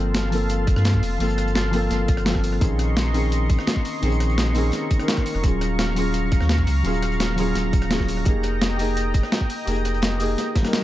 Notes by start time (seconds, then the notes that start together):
Already playing: G1 F3 A#3 C4 A4 F5 A5 C6
0.14 snare, closed hi-hat
0.30 F3 A#3 C4, closed hi-hat, open hi-hat
0.35 A4
0.49 closed hi-hat
0.67 kick, closed hi-hat
0.76 G2, cross-stick, snare
0.85 snare, closed hi-hat
0.94 kick
1.03 F1, closed hi-hat, open hi-hat
1.18 G1 F3 A#3 C4, closed hi-hat, open hi-hat
1.22 A4
1.30 closed hi-hat
1.38 cross-stick, closed hi-hat
1.48 closed hi-hat
1.55 snare, closed hi-hat
1.71 F3 A#3 C4, closed hi-hat, open hi-hat
1.75 A4
1.90 G1, snare, closed hi-hat
2.08 kick, closed hi-hat
2.17 cross-stick, closed hi-hat
2.25 F3 A#3 C4 A4, snare, closed hi-hat
2.35 kick, cross-stick, snare
2.44 closed hi-hat, open hi-hat
2.53 cross-stick
2.59 A#1 D#3 C4 C#4 D#5 A#5 C6 C#6, kick, closed hi-hat
2.64 G#4
2.79 cross-stick, closed hi-hat
2.97 snare, closed hi-hat
3.12 D#3 C4 C#4, closed hi-hat, open hi-hat
3.16 G#4
3.32 closed hi-hat
3.50 kick, closed hi-hat
3.59 cross-stick, snare
3.67 snare, closed hi-hat
3.76 kick
3.85 closed hi-hat, open hi-hat
4.01 A#1 D#3 C4 C#4, closed hi-hat, open hi-hat
4.05 G#4
4.12 closed hi-hat
4.20 cross-stick, closed hi-hat
4.30 closed hi-hat
4.38 snare, closed hi-hat
4.53 D#3 C4 C#4, closed hi-hat, open hi-hat
4.58 G#4
4.72 snare, closed hi-hat
4.91 kick, closed hi-hat
4.98 D#3 C4 C#4, cross-stick, closed hi-hat
5.02 A#4
5.08 snare, closed hi-hat
5.17 kick, cross-stick, snare
5.26 closed hi-hat, open hi-hat
5.35 F1, cross-stick
5.42 D#1 F#3 C#4 F4 F5, kick, closed hi-hat
5.46 G#4
5.61 cross-stick, closed hi-hat
5.79 snare, closed hi-hat
5.95 F#3 C#4 F4, closed hi-hat, open hi-hat
5.99 G#4
6.14 closed hi-hat
6.32 kick, closed hi-hat
6.41 D#2, cross-stick, snare
6.49 snare, closed hi-hat
6.58 kick
6.67 C#2, closed hi-hat, open hi-hat
6.83 D#1 F#3 C#4 F4, closed hi-hat, open hi-hat
6.87 G#4
6.94 closed hi-hat
7.03 cross-stick, closed hi-hat
7.12 closed hi-hat
7.20 snare, closed hi-hat
7.36 F#3 C#4 F4, closed hi-hat, open hi-hat
7.40 G#4
7.55 D#1, snare, closed hi-hat
7.73 kick, closed hi-hat
7.82 cross-stick, closed hi-hat
7.90 F#3 C#4 F4 G#4, snare, closed hi-hat
8.00 kick, cross-stick, snare
8.08 closed hi-hat, open hi-hat
8.17 cross-stick
8.24 F1 A#3 D#4 G4 D#5 G5, kick, closed hi-hat
8.29 G#4
8.43 cross-stick, closed hi-hat
8.61 snare, closed hi-hat
8.77 A#3 D#4 G4, closed hi-hat, open hi-hat
8.81 G#4
8.97 closed hi-hat
9.14 kick, closed hi-hat
9.23 cross-stick, snare
9.32 snare, closed hi-hat
9.41 kick
9.50 closed hi-hat, open hi-hat
9.65 F1 A#3 D#4 G4, closed hi-hat, open hi-hat
9.70 G#4
9.76 closed hi-hat
9.85 cross-stick, closed hi-hat
9.94 closed hi-hat
10.02 snare, closed hi-hat
10.18 A#3 D#4 G4, closed hi-hat, open hi-hat
10.22 G#4
10.38 snare, closed hi-hat
10.55 kick, snare, closed hi-hat
10.62 G3 A#3 D#4, cross-stick, snare, closed hi-hat
10.67 A#4
10.73 snare, closed hi-hat